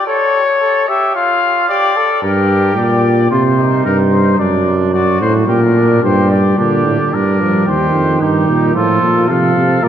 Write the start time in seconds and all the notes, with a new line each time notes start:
0.07 A4 C#5
0.61 A4
0.88 G4 E5
1.15 F4 F5
1.69 G4 D5
1.97 A4
2.23 G2 G4 A#4
2.76 A#2 D5
3.31 C3 F4 C5
3.59 D#4
3.85 G2 A#4
4.11 C5
4.39 F#2 D4 D5
4.93 F#4 D5
5.21 A2 C5
5.48 A#2 G4 A#4
5.75 D4
6.03 G2 G4 C5
6.31 D5
6.58 A#2 D3 D4 G4
6.86 A2
7.12 G2 G3 D4 A#4
7.40 F3
7.66 D#2 D#3 G4 C5
7.94 F2
8.21 G2 D#4 G4
8.48 A#2
8.75 A2 F3 F4 A4
9.02 A#2
9.29 C3 F3 A4 F5
9.56 C3
9.83 A#2 G3 A#4 D5